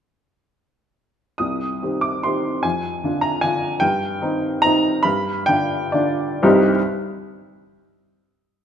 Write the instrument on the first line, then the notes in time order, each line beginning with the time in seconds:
upright piano
1.38 C2 D#6
1.82 D#3 C4 G4
2.01 D6
2.23 D#3 C4 G4 C6
2.63 F2 G#5
3.04 D3 D4 F4
3.21 A#5
3.41 D3 D4 F4 G#5
3.80 G2 G5
4.21 D#3 C4 D#4
4.62 D#3 C4 D#4 A#5
5.03 G2 B5
5.46 D3 D4 F4 G5
5.92 D3 D4 F4 D5
6.42 C2 G2 G3 C4 D#4 G4 C5